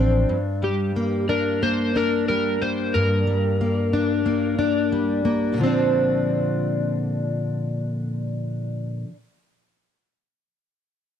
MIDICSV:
0, 0, Header, 1, 4, 480
1, 0, Start_track
1, 0, Key_signature, -2, "major"
1, 0, Tempo, 658545
1, 220, Time_signature, 4, 2, 24, 8
1, 8157, End_track
2, 0, Start_track
2, 0, Title_t, "Electric slide guitar"
2, 0, Program_c, 0, 29
2, 466, Note_on_c, 0, 67, 90
2, 914, Note_off_c, 0, 67, 0
2, 943, Note_on_c, 0, 70, 95
2, 1186, Note_on_c, 0, 72, 127
2, 1189, Note_off_c, 0, 70, 0
2, 1430, Note_off_c, 0, 72, 0
2, 1433, Note_on_c, 0, 70, 100
2, 1655, Note_off_c, 0, 70, 0
2, 1664, Note_on_c, 0, 70, 110
2, 1906, Note_on_c, 0, 72, 87
2, 1909, Note_off_c, 0, 70, 0
2, 2143, Note_on_c, 0, 70, 100
2, 2150, Note_off_c, 0, 72, 0
2, 3552, Note_off_c, 0, 70, 0
2, 8157, End_track
3, 0, Start_track
3, 0, Title_t, "Steel-string acoustic guitar"
3, 0, Program_c, 1, 25
3, 0, Note_on_c, 1, 53, 65
3, 0, Note_on_c, 1, 60, 60
3, 0, Note_on_c, 1, 62, 70
3, 214, Note_on_c, 1, 43, 83
3, 266, Note_off_c, 1, 53, 0
3, 266, Note_off_c, 1, 60, 0
3, 456, Note_on_c, 1, 55, 55
3, 702, Note_on_c, 1, 58, 65
3, 937, Note_off_c, 1, 62, 0
3, 940, Note_on_c, 1, 62, 67
3, 1182, Note_off_c, 1, 58, 0
3, 1185, Note_on_c, 1, 58, 64
3, 1424, Note_off_c, 1, 62, 0
3, 1427, Note_on_c, 1, 62, 67
3, 1658, Note_off_c, 1, 55, 0
3, 1671, Note_on_c, 1, 55, 57
3, 1907, Note_off_c, 1, 58, 0
3, 1909, Note_on_c, 1, 58, 66
3, 2137, Note_off_c, 1, 43, 0
3, 2150, Note_on_c, 1, 43, 87
3, 2375, Note_off_c, 1, 55, 0
3, 2384, Note_on_c, 1, 55, 60
3, 2628, Note_off_c, 1, 58, 0
3, 2631, Note_on_c, 1, 58, 68
3, 2863, Note_off_c, 1, 62, 0
3, 2866, Note_on_c, 1, 62, 67
3, 3100, Note_off_c, 1, 58, 0
3, 3103, Note_on_c, 1, 58, 68
3, 3339, Note_off_c, 1, 62, 0
3, 3342, Note_on_c, 1, 62, 73
3, 3579, Note_off_c, 1, 55, 0
3, 3588, Note_on_c, 1, 55, 57
3, 3824, Note_off_c, 1, 58, 0
3, 3826, Note_on_c, 1, 58, 67
3, 4033, Note_off_c, 1, 43, 0
3, 4036, Note_on_c, 1, 46, 82
3, 4065, Note_on_c, 1, 50, 81
3, 4084, Note_off_c, 1, 55, 0
3, 4087, Note_on_c, 1, 53, 86
3, 4104, Note_off_c, 1, 58, 0
3, 4107, Note_on_c, 1, 60, 78
3, 4122, Note_off_c, 1, 62, 0
3, 4125, Note_on_c, 1, 62, 91
3, 6587, Note_off_c, 1, 46, 0
3, 6616, Note_off_c, 1, 50, 0
3, 6638, Note_off_c, 1, 53, 0
3, 6658, Note_off_c, 1, 60, 0
3, 6676, Note_off_c, 1, 62, 0
3, 8157, End_track
4, 0, Start_track
4, 0, Title_t, "Fingered electric bass"
4, 0, Program_c, 2, 33
4, 0, Note_on_c, 2, 33, 98
4, 173, Note_off_c, 2, 33, 0
4, 8157, End_track
0, 0, End_of_file